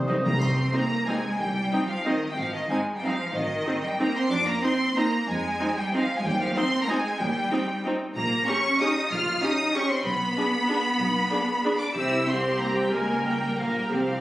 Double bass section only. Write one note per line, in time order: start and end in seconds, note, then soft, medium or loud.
0.41 0.67 C2 medium
1.39 1.64 C2 medium
2.38 2.63 G#1 medium
3.35 3.60 G#1 medium
4.31 4.56 F2 medium
5.28 5.53 F2 medium
6.25 6.49 D#2 medium
7.20 7.45 D#2 medium
8.16 8.40 A#1 medium
9.11 9.36 A#1 medium
10.05 10.30 B1 medium
10.99 11.24 B1 medium
11.95 12.87 C2 medium
12.92 13.57 C#2 soft
13.58 13.91 A#1 soft
13.91 14.21 C2 soft